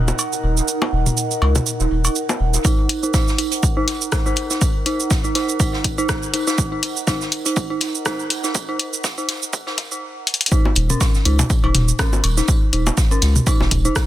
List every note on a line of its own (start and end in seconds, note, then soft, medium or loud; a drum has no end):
0.00 0.12 D#1 medium
0.00 10.02 D#4 medium
0.00 10.02 A#4 medium
0.00 10.02 F#5 medium
0.08 low bongo medium
0.08 shaker soft
0.19 tambourine medium
0.19 cowbell medium
0.19 shaker medium
0.33 shaker soft
0.43 0.61 D#1 medium
0.43 tambourine medium
0.57 snare soft
0.57 shaker soft
0.68 tambourine medium
0.68 shaker medium
0.82 cowbell medium
0.82 low bongo medium
0.93 1.11 D#1 loud
0.93 tambourine medium
1.06 mid tom medium
1.06 shaker soft
1.16 tambourine medium
1.16 shaker medium
1.31 shaker soft
1.42 1.60 C#2 medium
1.42 snare medium
1.42 cowbell medium
1.56 mid tom medium
1.56 low bongo medium
1.56 shaker soft
1.66 tambourine medium
1.66 shaker medium
1.80 1.88 D#1 loud
1.80 snare medium
1.80 shaker soft
1.91 2.09 D#1 medium
1.91 tambourine medium
2.05 cowbell medium
2.05 shaker soft
2.16 tambourine medium
2.16 shaker medium
2.29 low bongo medium
2.29 shaker soft
2.40 2.58 D#1 medium
2.40 tambourine medium
2.54 snare medium
2.54 shaker soft
2.65 2.71 D#4 loud
2.65 kick loud
2.65 tambourine medium
2.65 shaker medium
2.89 closed hi-hat medium
2.89 tambourine medium
3.03 3.10 D#4 medium
3.03 shaker soft
3.14 3.18 D#4 loud
3.14 kick loud
3.14 snare loud
3.14 tambourine medium
3.14 shaker medium
3.28 snare medium
3.28 shaker soft
3.38 3.45 D#4 medium
3.38 closed hi-hat medium
3.38 tambourine medium
3.52 closed hi-hat soft
3.52 shaker soft
3.63 kick loud
3.63 tambourine medium
3.63 shaker medium
3.77 3.82 D#4 loud
3.88 snare soft
3.88 closed hi-hat medium
3.88 tambourine medium
4.01 shaker soft
4.12 4.22 D#4 medium
4.12 kick loud
4.12 cross-stick loud
4.12 snare loud
4.12 tambourine medium
4.12 shaker medium
4.26 4.29 D#4 loud
4.26 shaker soft
4.36 closed hi-hat medium
4.36 tambourine medium
4.50 4.55 D#4 medium
4.50 snare soft
4.50 shaker soft
4.61 kick loud
4.61 tambourine medium
4.61 shaker medium
4.86 4.92 D#4 loud
4.86 closed hi-hat loud
4.86 tambourine medium
5.00 shaker soft
5.11 kick loud
5.11 snare loud
5.11 tambourine medium
5.11 shaker medium
5.24 5.32 D#4 medium
5.24 shaker soft
5.35 5.39 D#4 loud
5.35 snare medium
5.35 closed hi-hat medium
5.35 tambourine medium
5.49 shaker soft
5.60 5.66 D#4 medium
5.60 kick loud
5.60 tambourine medium
5.60 shaker soft
5.73 snare medium
5.84 kick medium
5.84 closed hi-hat medium
5.84 tambourine medium
5.98 6.03 D#4 loud
5.98 shaker soft
6.09 kick loud
6.09 cross-stick loud
6.09 snare loud
6.09 tambourine medium
6.09 shaker medium
6.23 shaker soft
6.34 6.43 D#4 medium
6.34 closed hi-hat medium
6.34 tambourine medium
6.47 6.50 D#4 loud
6.47 snare medium
6.47 shaker soft
6.58 kick loud
6.58 tambourine medium
6.58 shaker soft
6.72 6.77 D#4 medium
6.83 closed hi-hat loud
6.83 tambourine medium
6.97 shaker soft
7.07 7.14 D#4 medium
7.07 kick loud
7.07 snare loud
7.07 tambourine medium
7.07 shaker soft
7.21 snare medium
7.21 shaker soft
7.32 closed hi-hat medium
7.32 tambourine medium
7.46 7.53 D#4 medium
7.46 closed hi-hat soft
7.46 shaker soft
7.56 kick loud
7.56 tambourine medium
7.56 shaker soft
7.70 7.75 D#4 medium
7.81 snare soft
7.81 closed hi-hat medium
7.81 tambourine medium
7.95 shaker soft
8.06 8.12 D#4 medium
8.06 kick loud
8.06 cross-stick loud
8.06 snare loud
8.06 tambourine medium
8.06 shaker medium
8.19 shaker soft
8.30 closed hi-hat medium
8.30 tambourine medium
8.44 8.51 D#4 medium
8.44 snare soft
8.44 shaker soft
8.54 kick loud
8.54 tambourine medium
8.54 shaker soft
8.69 8.73 D#4 medium
8.79 closed hi-hat medium
8.79 tambourine medium
8.93 shaker soft
9.04 kick loud
9.04 snare loud
9.04 tambourine medium
9.04 shaker soft
9.18 9.23 D#4 medium
9.18 shaker soft
9.28 snare medium
9.28 closed hi-hat medium
9.28 tambourine medium
9.42 shaker soft
9.53 kick loud
9.53 tambourine medium
9.53 shaker soft
9.67 9.72 D#4 medium
9.67 snare medium
9.78 kick medium
9.78 snare loud
9.78 closed hi-hat loud
9.78 tambourine medium
9.92 9.96 D#4 medium
9.92 shaker soft
10.27 closed hi-hat medium
10.34 closed hi-hat medium
10.41 closed hi-hat medium
10.46 closed hi-hat medium
10.52 10.58 D#4 medium
10.52 kick loud
10.52 tambourine medium
10.52 shaker medium
10.65 low bongo medium
10.75 10.94 D#1 loud
10.75 closed hi-hat medium
10.75 tambourine medium
10.90 10.95 C#4 medium
10.90 mid tom medium
10.90 shaker soft
11.00 kick loud
11.00 snare loud
11.00 tambourine medium
11.00 cowbell medium
11.00 shaker medium
11.15 snare soft
11.15 shaker soft
11.25 11.43 C#2 loud
11.25 11.35 D#4 medium
11.25 closed hi-hat medium
11.25 tambourine medium
11.39 closed hi-hat soft
11.39 mid tom medium
11.39 low bongo medium
11.39 shaker soft
11.50 kick loud
11.50 tambourine medium
11.50 shaker medium
11.64 11.71 D#1 loud
11.64 11.69 D#4 medium
11.64 cowbell medium
11.74 11.92 D#1 medium
11.74 snare soft
11.74 closed hi-hat medium
11.74 mid tom loud
11.74 tambourine medium
11.88 shaker soft
11.99 12.05 C#4 medium
11.99 kick loud
11.99 cross-stick loud
11.99 snare loud
11.99 tambourine loud
11.99 shaker medium
12.13 low bongo medium
12.13 shaker soft
12.23 12.42 D#1 medium
12.23 closed hi-hat medium
12.23 tambourine medium
12.23 cowbell medium
12.37 12.45 D#4 medium
12.37 snare soft
12.37 shaker soft
12.48 kick loud
12.48 tambourine medium
12.48 shaker medium
12.73 12.91 D#1 loud
12.73 12.79 D#4 medium
12.73 closed hi-hat loud
12.73 tambourine medium
12.87 cowbell medium
12.87 low bongo medium
12.87 shaker soft
12.97 kick loud
12.97 snare loud
12.97 tambourine medium
12.97 shaker medium
13.11 13.16 C#4 medium
13.11 shaker soft
13.22 13.40 C#2 loud
13.22 snare medium
13.22 closed hi-hat loud
13.22 tambourine medium
13.36 mid tom loud
13.36 shaker soft
13.47 13.56 D#4 medium
13.47 kick loud
13.47 tambourine medium
13.47 cowbell medium
13.47 shaker medium
13.60 13.68 D#1 loud
13.60 snare medium
13.60 low bongo medium
13.71 13.89 D#1 medium
13.71 kick medium
13.71 closed hi-hat medium
13.71 tambourine medium
13.85 13.90 D#4 medium
13.85 shaker soft
13.96 kick loud
13.96 cross-stick loud
13.96 snare loud
13.96 tambourine medium
13.96 shaker medium